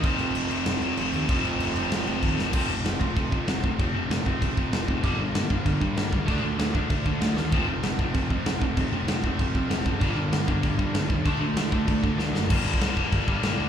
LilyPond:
<<
  \new Staff \with { instrumentName = "Distorted electric guitar" } { \clef bass \time 4/4 \key f \mixolydian \tempo 4 = 192 <f, c f a c'>4. <f, c f a c'>2~ <f, c f a c'>8 | <f, c f a c'>4. <f, c f a c'>2~ <f, c f a c'>8 | <f, c f a c'>4. <f, c f a c'>2~ <f, c f a c'>8 | <f, c f a c'>4. <f, c f a c'>2~ <f, c f a c'>8 |
<g, d g bes d'>4. <g, d g bes d'>2~ <g, d g bes d'>8 | <d f a d'>4. <d f a d'>2~ <d f a d'>8 | <f, c f a c'>4. <f, c f a c'>2~ <f, c f a c'>8 | <f, c f a c'>4. <f, c f a c'>2~ <f, c f a c'>8 |
<g, d g bes d'>4. <g, d g bes d'>2~ <g, d g bes d'>8 | <d f a d'>4. <d f a d'>2~ <d f a d'>8 | <g, d g bes d'>2~ <g, d g bes d'>8 <g, d g bes d'>8 <g, d g bes d'>4 | }
  \new Staff \with { instrumentName = "Distorted electric guitar" } { \clef bass \time 4/4 \key f \mixolydian <f, c f>2~ <f, c f>8 <f, c f>8 <f, c f>4 | <f, c f>2~ <f, c f>8 <f, c f>8 <f, c f>4 | <f, c f>8 <f, c>8 <f, c>8 <f, c>8 <f, c>8 <f, c>8 <f, c>8 <f, c>8 | <f, c>8 <f, c>8 <f, c>8 <f, c>8 <f, c>8 <f, c>8 <f, c>8 <f, c>8 |
<g, d g>8 <g, d>8 <g, d>8 <g, d>8 <g, d>8 <g, d>8 <g, d>8 <g, d>8 | <d a d'>8 <d a>8 <d a>8 <d a>8 <d a>8 <d a>8 <d a>8 <d a>8 | <f, c f>8 <f, c>8 <f, c>8 <f, c>8 <f, c>8 <f, c>8 <f, c>8 <f, c>8 | <f, c>8 <f, c>8 <f, c>8 <f, c>8 <f, c>8 <f, c>8 <f, c>8 <f, c>8 |
<g, d g>8 <g, d>8 <g, d>8 <g, d>8 <g, d>8 <g, d>8 <g, d>8 <g, d>8 | <d a d'>8 <d a>8 <d a>8 <d a>8 <d a>8 <d a>8 <d a>8 <d a>8 | <g, d g>8 <g, d g>8 <g, d g>8 <g, d g>8 <g, d g>8 <g, d g>8 <g, d g>8 <g, d g>8 | }
  \new Staff \with { instrumentName = "Overdriven electric guitar" } { \clef bass \time 4/4 \key f \mixolydian <f, c f>1 | <f, c f>1 | <f, c f>8 <f, c>8 <f, c>8 <f, c>8 <f, c>8 <f, c>8 <f, c>8 <f, c>8 | <f, c>8 <f, c>8 <f, c>8 <f, c>8 <f, c>8 <f, c>8 <f, c>8 <f, c>8 |
<g, d g>8 <g, d>8 <g, d>8 <g, d>8 <g, d>8 <g, d>8 <g, d>8 <g, d>8 | <d a d'>8 <d a>8 <d a>8 <d a>8 <d a>8 <d a>8 <d a>8 <d a>8 | <f, c f>8 <f, c>8 <f, c>8 <f, c>8 <f, c>8 <f, c>8 <f, c>8 <f, c>8 | <f, c>8 <f, c>8 <f, c>8 <f, c>8 <f, c>8 <f, c>8 <f, c>8 <f, c>8 |
<g, d g>8 <g, d>8 <g, d>8 <g, d>8 <g, d>8 <g, d>8 <g, d>8 <g, d>8 | <d a d'>8 <d a>8 <d a>8 <d a>8 <d a>8 <d a>8 <d a>8 <d a>8 | r1 | }
  \new Staff \with { instrumentName = "Picked electric bass" } { \clef bass \time 4/4 \key f \mixolydian f,,8 f,,8 f,,8 f,,8 f,,8 f,8 f,,8 ees,8 | f,,8 f,,8 f,,8 f,,8 f,,8 f,,8 ees,8 f,,8 | f,,8 f,,8 f,,8 f,,8 f,,8 f,8 f,,8 f,,8 | f,,8 f,,8 f,,8 f,,8 f,,8 f,8 f,,8 f,,8 |
g,,8 g,,8 g,,8 g,,8 g,,8 g,8 g,,8 cis,8 | d,8 d,8 d,8 d,8 d,8 d8 d,8 ees,8 | f,,8 f,,8 f,,8 f,,8 f,,8 f,8 f,,8 f,,8 | f,,8 f,,8 f,,8 f,,8 f,,8 f,8 f,,8 fis,,8 |
g,,8 g,,8 g,,8 g,,8 g,,8 g,8 g,,8 ees,8 | d,8 d,8 d,8 d,8 d,8 d8 d,8 fis,,8 | g,,8 g,,8 c,8 f,,8 g,,8 g,,8 g,,8 d,8 | }
  \new DrumStaff \with { instrumentName = "Drums" } \drummode { \time 4/4 <cymc bd>8 cymc8 cymc8 cymc8 <cymc sn>8 cymc8 cymc8 cymc8 | <cymc bd>8 cymc8 cymc8 cymc8 <cymc sn>8 cymc8 <cymc bd>8 sn8 | <cymc bd>4 <cymc sn>8 bd8 <cymc bd>8 bd8 <cymc sn>8 bd8 | <cymc bd>4 <cymc sn>8 bd8 <cymc bd>8 bd8 <cymc sn>8 bd8 |
<cymc bd>4 <cymc sn>8 bd8 <cymc bd>8 bd8 <cymc sn>8 bd8 | <cymc bd>4 <cymc sn>8 bd8 <cymc bd>8 bd8 <cymc sn>8 sn8 | <cymc bd>4 <cymc sn>8 bd8 <cymc bd>8 bd8 <cymc sn>8 bd8 | <cymc bd>4 <cymc sn>8 bd8 <cymc bd>8 bd8 <cymc sn>8 bd8 |
<cymc bd>4 <cymc sn>8 bd8 <cymc bd>8 bd8 <cymc sn>8 bd8 | <cymc bd>4 <cymc sn>8 bd8 <cymc bd>8 bd8 sn8 sn8 | <cymc bd>8. bd16 <cymc sn>8 bd8 <cymc bd>8 bd8 <cymc sn>4 | }
>>